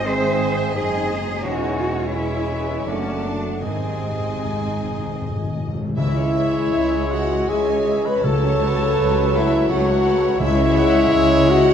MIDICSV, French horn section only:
0, 0, Header, 1, 2, 480
1, 0, Start_track
1, 0, Key_signature, 4, "minor"
1, 0, Tempo, 699301
1, 999, Time_signature, 3, 2, 24, 8
1, 1969, Tempo, 777202
1, 3889, Tempo, 756620
1, 5329, Tempo, 722892
1, 7646, End_track
2, 0, Start_track
2, 0, Title_t, "French horn section"
2, 0, Program_c, 0, 60
2, 28, Note_on_c, 0, 60, 96
2, 503, Note_off_c, 0, 60, 0
2, 519, Note_on_c, 0, 56, 88
2, 988, Note_on_c, 0, 54, 97
2, 998, Note_off_c, 0, 56, 0
2, 1458, Note_off_c, 0, 54, 0
2, 1467, Note_on_c, 0, 52, 73
2, 1967, Note_off_c, 0, 52, 0
2, 1972, Note_on_c, 0, 49, 72
2, 2202, Note_off_c, 0, 49, 0
2, 2217, Note_on_c, 0, 50, 57
2, 2441, Note_on_c, 0, 48, 73
2, 2450, Note_off_c, 0, 50, 0
2, 3395, Note_off_c, 0, 48, 0
2, 3893, Note_on_c, 0, 64, 107
2, 4587, Note_off_c, 0, 64, 0
2, 4619, Note_on_c, 0, 66, 102
2, 4849, Note_on_c, 0, 68, 96
2, 4857, Note_off_c, 0, 66, 0
2, 5211, Note_off_c, 0, 68, 0
2, 5216, Note_on_c, 0, 71, 91
2, 5321, Note_on_c, 0, 69, 110
2, 5332, Note_off_c, 0, 71, 0
2, 6060, Note_off_c, 0, 69, 0
2, 6063, Note_on_c, 0, 64, 115
2, 6297, Note_off_c, 0, 64, 0
2, 6299, Note_on_c, 0, 66, 107
2, 6766, Note_on_c, 0, 64, 127
2, 6767, Note_off_c, 0, 66, 0
2, 7471, Note_off_c, 0, 64, 0
2, 7484, Note_on_c, 0, 66, 127
2, 7646, Note_off_c, 0, 66, 0
2, 7646, End_track
0, 0, End_of_file